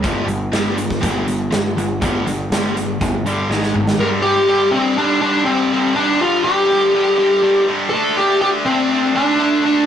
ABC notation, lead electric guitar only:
X:1
M:4/4
L:1/8
Q:1/4=122
K:Dm
V:1 name="Lead electric guitar"
z8 | z8 | B G2 C D D C2 | D F G4- G z |
A G G C2 D3 |]